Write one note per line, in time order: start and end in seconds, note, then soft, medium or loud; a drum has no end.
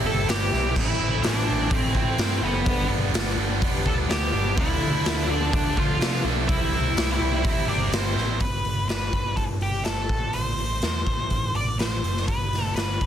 0.00 0.28 E4 medium
0.00 0.74 G4 medium
0.00 2.63 C5 medium
0.00 2.63 E5 medium
0.00 0.74 C6 medium
0.04 0.24 G1 medium
0.04 0.26 C3 medium
0.04 0.27 G3 medium
0.04 0.28 C4 medium
0.04 0.28 A4 medium
0.04 0.30 A5 medium
0.27 0.49 G1 medium
0.27 0.74 C3 medium
0.27 0.53 G3 medium
0.27 0.52 C4 medium
0.27 0.51 E4 medium
0.27 0.73 G4 medium
0.27 0.77 G5 loud
0.27 snare loud
0.27 open hi-hat medium
0.52 0.72 B1 medium
0.52 0.75 G3 medium
0.52 0.75 C4 medium
0.52 0.75 E4 medium
0.52 snare soft
0.74 0.96 A1 medium
0.74 1.22 A2 medium
0.74 1.23 E3 loud
0.74 1.01 A3 loud
0.74 1.00 C4 loud
0.74 0.98 E4 loud
0.74 1.21 E4 medium
0.74 2.65 A4 medium
0.74 4.53 B5 medium
0.74 kick loud
0.74 crash loud
0.79 1.27 E5 loud
0.99 1.19 A1 medium
0.99 1.23 A3 medium
0.99 1.24 C4 medium
0.99 1.25 E4 medium
1.23 1.44 A1 medium
1.23 1.71 A2 loud
1.23 1.70 E3 loud
1.23 1.48 A3 medium
1.23 1.47 C4 loud
1.23 1.69 D4 medium
1.23 1.46 E4 loud
1.23 snare loud
1.23 open hi-hat medium
1.27 1.75 D5 medium
1.47 1.68 A1 loud
1.47 1.71 A3 medium
1.47 1.71 C4 medium
1.47 1.72 E4 medium
1.71 1.91 A1 medium
1.71 1.95 E3 medium
1.71 1.94 A3 medium
1.71 1.94 C4 medium
1.71 1.93 E4 medium
1.71 1.96 C5 medium
1.71 kick loud
1.71 open hi-hat medium
1.94 2.15 A1 medium
1.94 2.44 A2 medium
1.94 2.17 E3 medium
1.94 2.17 A3 medium
1.94 2.18 C4 medium
1.94 2.40 C4 medium
1.94 2.19 E4 medium
1.94 2.44 C5 medium
1.94 kick medium
2.18 2.38 G2 medium
2.18 2.65 E3 medium
2.18 2.43 A3 medium
2.18 2.42 C4 medium
2.18 2.40 E4 medium
2.18 snare loud
2.18 open hi-hat medium
2.41 2.62 F#1 medium
2.41 2.66 A3 medium
2.41 2.87 B3 medium
2.41 2.65 C4 medium
2.41 2.65 E4 medium
2.41 2.88 B4 medium
2.65 2.86 G1 loud
2.65 3.11 G2 loud
2.65 3.12 D3 loud
2.65 2.91 G3 loud
2.65 2.90 B3 medium
2.65 2.89 D4 loud
2.65 4.56 G4 medium
2.65 4.55 B4 medium
2.65 4.55 D5 medium
2.65 kick loud
2.65 open hi-hat medium
2.90 3.10 G1 medium
2.90 3.13 G3 medium
2.90 3.14 B3 medium
2.90 3.15 D4 medium
3.13 3.34 G1 medium
3.13 3.61 G2 loud
3.13 3.59 D3 loud
3.13 3.38 G3 medium
3.13 3.36 B3 medium
3.13 3.36 D4 loud
3.13 snare loud
3.13 open hi-hat medium
3.36 3.58 G1 loud
3.36 3.60 G3 medium
3.36 3.61 B3 medium
3.36 3.62 D4 medium
3.60 3.82 F1 medium
3.60 3.85 D3 medium
3.60 3.85 G3 medium
3.60 3.84 B3 medium
3.60 3.83 D4 medium
3.60 kick loud
3.60 open hi-hat medium
3.84 4.06 D2 medium
3.84 4.34 G2 medium
3.84 4.07 D3 medium
3.84 4.08 G3 medium
3.84 4.09 B3 medium
3.84 4.10 D4 loud
3.84 3.93 A4 medium
3.84 kick medium
3.89 3.95 A5 loud
4.08 4.30 D2 loud
4.08 4.55 D3 medium
4.08 4.34 G3 medium
4.08 4.33 B3 medium
4.08 4.31 D4 medium
4.08 4.54 G4 medium
4.08 4.60 G5 loud
4.08 snare loud
4.08 open hi-hat medium
4.32 4.54 G1 loud
4.32 4.56 G3 medium
4.32 4.56 B3 medium
4.32 4.55 D4 medium
4.56 4.77 D2 loud
4.56 5.03 D3 loud
4.56 4.82 F3 medium
4.56 6.47 F3 medium
4.56 4.81 A3 loud
4.56 4.79 D4 loud
4.56 5.26 E4 medium
4.56 6.47 A4 medium
4.56 6.47 D5 medium
4.56 5.32 E5 loud
4.56 6.47 A5 medium
4.56 kick loud
4.56 open hi-hat medium
4.80 5.01 D2 medium
4.80 5.04 F3 medium
4.80 5.05 A3 medium
4.80 5.05 D4 medium
5.04 5.25 D2 medium
5.04 5.50 D3 medium
5.04 5.30 F3 loud
5.04 5.28 A3 loud
5.04 5.26 D4 loud
5.04 snare loud
5.04 open hi-hat medium
5.28 5.49 D2 medium
5.28 5.52 F3 medium
5.28 5.53 A3 medium
5.28 5.53 D4 medium
5.28 5.52 D4 medium
5.28 5.53 D5 medium
5.51 5.73 D2 loud
5.51 5.77 D3 medium
5.51 5.77 F3 medium
5.51 5.76 A3 medium
5.51 5.74 D4 loud
5.51 5.76 D4 medium
5.51 5.78 D5 medium
5.51 kick loud
5.51 open hi-hat medium
5.75 5.97 D2 medium
5.75 5.98 D3 medium
5.75 5.98 F3 medium
5.75 5.99 A3 medium
5.75 6.00 D4 loud
5.75 6.23 F4 medium
5.75 6.22 F5 medium
5.75 kick medium
5.99 6.20 C3 medium
5.99 6.46 D3 medium
5.99 6.25 F3 medium
5.99 6.24 A3 medium
5.99 6.22 D4 medium
5.99 snare loud
5.99 open hi-hat medium
6.24 6.44 B1 medium
6.24 6.48 F3 medium
6.24 6.48 A3 medium
6.24 6.47 D4 medium
6.48 6.69 C2 medium
6.48 6.95 C3 loud
6.48 6.73 G3 medium
6.48 6.72 C4 loud
6.48 8.39 E4 medium
6.48 7.89 E4 medium
6.48 6.71 E4 loud
6.48 8.39 G4 medium
6.48 8.39 C5 medium
6.48 7.89 E5 loud
6.48 8.39 G5 medium
6.48 kick loud
6.48 open hi-hat medium
6.71 6.92 C2 medium
6.71 6.96 G3 medium
6.71 6.97 C4 medium
6.71 6.97 E4 medium
6.96 7.17 C2 medium
6.96 7.42 C3 loud
6.96 7.21 G3 loud
6.96 7.20 C4 loud
6.96 7.18 E4 loud
6.96 snare loud
6.96 open hi-hat medium
7.19 7.41 C2 medium
7.19 7.43 G3 medium
7.19 7.44 C4 medium
7.19 7.45 E4 medium
7.44 7.65 A1 loud
7.44 7.69 C3 medium
7.44 7.69 G3 medium
7.44 7.68 C4 medium
7.44 7.66 E4 medium
7.44 kick loud
7.44 open hi-hat medium
7.68 7.88 G1 medium
7.68 7.90 C3 medium
7.68 7.91 G3 medium
7.68 7.92 C4 medium
7.68 7.93 E4 medium
7.68 7.93 D5 loud
7.91 8.12 G1 medium
7.91 8.39 C3 medium
7.91 8.17 G3 medium
7.91 8.15 C4 medium
7.91 8.14 E4 medium
7.91 8.40 C5 loud
7.91 snare loud
7.91 open hi-hat medium
8.15 8.36 A1 medium
8.15 8.40 G3 medium
8.15 8.39 C4 medium
8.15 8.38 E4 medium
8.15 snare soft
8.40 8.60 G1 medium
8.40 8.88 B4 medium
8.40 kick medium
8.40 open hi-hat medium
8.65 8.84 G1 medium
8.65 open hi-hat soft
8.89 9.08 G1 medium
8.89 9.34 B4 medium
8.89 snare medium
8.89 open hi-hat medium
9.13 9.32 G1 medium
9.13 kick medium
9.13 open hi-hat soft
9.36 9.56 G1 medium
9.36 9.43 A4 medium
9.36 kick medium
9.36 open hi-hat soft
9.61 9.81 G1 medium
9.61 9.85 G4 medium
9.61 open hi-hat soft
9.85 10.05 G1 medium
9.85 10.35 A4 medium
9.85 snare medium
9.85 open hi-hat medium
10.09 10.29 A1 medium
10.09 kick medium
10.09 open hi-hat soft
10.33 10.53 A1 medium
10.33 11.56 C5 medium
10.33 open hi-hat medium
10.57 10.78 A1 medium
10.57 open hi-hat soft
10.82 11.02 E2 medium
10.82 snare loud
10.82 open hi-hat medium
11.06 11.26 A1 medium
11.06 kick medium
11.06 open hi-hat soft
11.30 11.50 A1 medium
11.30 kick medium
11.30 open hi-hat medium
11.55 11.75 A1 medium
11.55 11.78 D5 medium
11.55 open hi-hat soft
11.79 11.98 A1 medium
11.79 12.27 C5 medium
11.79 snare medium
11.79 open hi-hat medium
12.04 12.23 F#1 medium
12.04 open hi-hat soft
12.17 snare soft
12.28 12.47 G1 medium
12.28 12.73 B4 medium
12.28 kick medium
12.28 open hi-hat medium
12.52 12.71 G1 medium
12.52 snare soft
12.52 open hi-hat soft
12.76 12.95 G1 medium
12.76 13.06 B4 medium
12.76 snare medium
12.76 open hi-hat medium
13.01 13.06 G1 medium
13.01 kick medium
13.01 open hi-hat soft